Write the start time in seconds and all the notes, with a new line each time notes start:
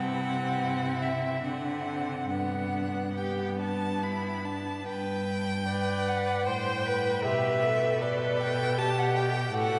Already playing: C3 C4 E4 F#5
1.02 E5
1.44 D3 C4 D4 F#5
2.30 G2 B3 D4 F#5
3.16 B3 G4 G5
3.59 D4 A5
4.02 E4 B5
4.45 D4 A5
4.86 G2 B4 G5
5.68 B4 D5
6.08 F#5
6.46 A2 C5 G5
6.85 B4
7.24 B2 G4 E5
7.63 A4
8.01 A4 B4 D5
8.40 G5
8.78 G4 A5
8.99 F#5
9.16 G5
9.54 A2 F#4 A4 F#5